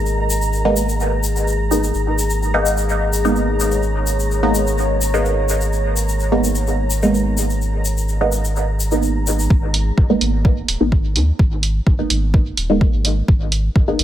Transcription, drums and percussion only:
0.06 shaker soft
0.30 shaker loud
0.42 shaker medium
0.53 shaker soft
0.76 shaker loud
0.89 shaker medium
1.00 shaker soft
1.23 shaker medium
1.36 shaker medium
1.47 shaker soft
1.72 shaker medium
1.83 shaker medium
1.94 shaker soft
2.19 shaker medium
2.30 shaker medium
2.43 shaker soft
2.66 shaker medium
2.77 shaker medium
2.89 shaker soft
3.13 shaker medium
3.25 shaker soft
3.36 shaker soft
3.60 shaker medium
3.71 shaker soft
3.83 shaker soft
4.07 shaker medium
4.19 shaker medium
4.31 shaker soft
4.55 shaker medium
4.67 shaker soft
4.78 shaker soft
5.01 shaker medium
5.14 shaker soft
5.25 shaker soft
5.49 shaker medium
5.61 shaker soft
5.73 shaker soft
5.96 shaker medium
6.09 shaker soft
6.20 shaker soft
6.44 shaker medium
6.55 shaker soft
6.67 shaker soft
6.90 shaker medium
7.02 shaker soft
7.14 shaker soft
7.37 shaker medium
7.50 shaker soft
7.61 shaker soft
7.85 shaker medium
7.97 shaker medium
8.09 shaker soft
8.32 shaker medium
8.45 shaker soft
8.56 shaker soft
8.80 shaker medium
8.91 shaker soft
9.03 shaker soft
9.27 shaker medium
9.39 shaker soft
9.50 kick loud
9.74 closed hi-hat medium
9.98 kick loud
10.21 closed hi-hat medium
10.45 kick loud
10.68 closed hi-hat medium
10.92 kick loud
11.16 closed hi-hat medium
11.39 kick loud
11.63 closed hi-hat medium
11.87 kick loud
12.10 closed hi-hat medium
12.34 kick loud
12.57 closed hi-hat medium
12.81 kick loud
13.05 closed hi-hat medium
13.28 kick loud
13.52 closed hi-hat medium
13.76 kick loud
13.99 closed hi-hat medium

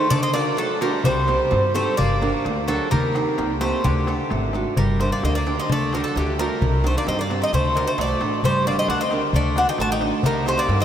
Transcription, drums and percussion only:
0.11 darbuka dum medium
0.23 darbuka tek soft
0.34 darbuka tek medium
0.58 darbuka tek medium
0.70 darbuka tek soft
0.81 darbuka tek medium
0.94 darbuka tek soft
1.04 darbuka dum medium
1.28 darbuka tek medium
1.40 darbuka tek soft
1.52 darbuka tek medium
1.76 darbuka tek medium
1.99 darbuka dum medium
2.22 darbuka tek medium
2.45 darbuka tek medium
2.69 darbuka tek medium
2.92 darbuka dum medium
3.15 darbuka tek medium
3.26 darbuka tek soft
3.38 darbuka tek medium
3.61 darbuka tek medium
3.84 darbuka dum medium
3.96 darbuka tek soft
4.07 darbuka tek medium
4.19 darbuka tek soft
4.30 darbuka tek medium
4.42 darbuka tek soft
4.53 darbuka tek medium
4.77 darbuka dum medium
5.00 darbuka tek medium
5.11 darbuka tek soft
5.23 darbuka tek medium
5.35 darbuka tek soft
5.47 darbuka tek medium
5.70 darbuka dum medium
5.93 darbuka tek medium
6.05 darbuka tek soft
6.16 darbuka tek medium
6.28 darbuka tek soft
6.39 darbuka tek medium
6.62 darbuka dum medium
6.84 darbuka tek medium
6.96 darbuka tek soft
7.07 darbuka tek medium
7.19 darbuka tek soft
7.30 darbuka tek medium
7.54 darbuka dum medium
7.76 darbuka tek medium
7.87 darbuka tek soft
7.98 darbuka tek medium
8.21 darbuka tek medium
8.32 darbuka tek soft
8.44 darbuka dum medium
8.67 darbuka tek medium
8.78 darbuka tek soft
8.88 darbuka tek medium
9.00 darbuka tek soft
9.11 darbuka tek medium
9.33 darbuka dum medium
9.56 darbuka tek medium
9.67 darbuka tek soft
9.78 darbuka tek medium
9.90 darbuka tek soft
10.01 darbuka tek medium
10.23 darbuka dum medium
10.46 darbuka tek medium
10.58 darbuka tek soft
10.69 darbuka tek medium
10.80 darbuka tek soft

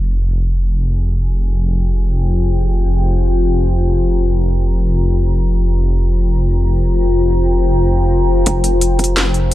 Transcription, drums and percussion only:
8.46 kick loud
8.46 closed hi-hat medium
8.64 closed hi-hat medium
8.81 closed hi-hat medium
8.99 kick medium
8.99 closed hi-hat soft
9.04 closed hi-hat medium
9.17 snare loud
9.17 closed hi-hat medium
9.34 closed hi-hat soft

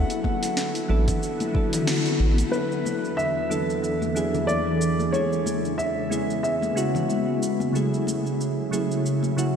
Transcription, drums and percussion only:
0.10 open hi-hat soft
0.10 shaker soft
0.24 kick medium
0.24 high conga medium
0.43 snare soft
0.43 open hi-hat medium
0.43 shaker medium
0.57 snare loud
0.57 shaker medium
0.75 open hi-hat soft
0.75 shaker soft
0.90 high conga medium
1.08 kick loud
1.08 open hi-hat medium
1.08 low conga medium
1.08 shaker medium
1.23 shaker medium
1.40 open hi-hat soft
1.40 high conga medium
1.40 shaker soft
1.55 kick loud
1.73 open hi-hat medium
1.73 low conga medium
1.73 shaker medium
1.87 snare loud
1.87 high conga medium
1.87 shaker medium
2.06 open hi-hat soft
2.06 shaker soft
2.38 open hi-hat medium
2.38 high conga medium
2.38 shaker medium
2.53 shaker soft
2.72 shaker soft
2.85 high conga medium
2.85 shaker medium
3.05 shaker soft
3.19 shaker soft
3.51 high conga medium
3.51 shaker medium
3.70 shaker soft
3.84 shaker soft
4.02 high conga medium
4.02 shaker soft
4.16 shaker medium
4.34 low conga medium
4.34 shaker soft
4.49 high conga medium
4.49 shaker soft
4.81 shaker medium
4.99 high conga medium
4.99 shaker soft
5.14 shaker soft
5.33 shaker soft
5.46 high conga medium
5.46 shaker medium
5.65 shaker soft
5.79 shaker soft
6.11 high conga medium
6.11 shaker medium
6.30 shaker soft
6.44 shaker soft
6.62 high conga medium
6.62 shaker soft
6.77 shaker medium
6.95 low conga medium
6.95 shaker soft
7.09 high conga medium
7.09 shaker soft
7.43 shaker medium
7.60 high conga medium
7.60 shaker soft
7.75 shaker soft
7.94 shaker soft
8.07 high conga medium
8.07 shaker medium
8.26 shaker soft
8.41 shaker soft
8.73 high conga medium
8.73 shaker medium
8.91 shaker soft
9.06 shaker soft
9.23 high conga medium
9.23 shaker soft
9.38 shaker medium

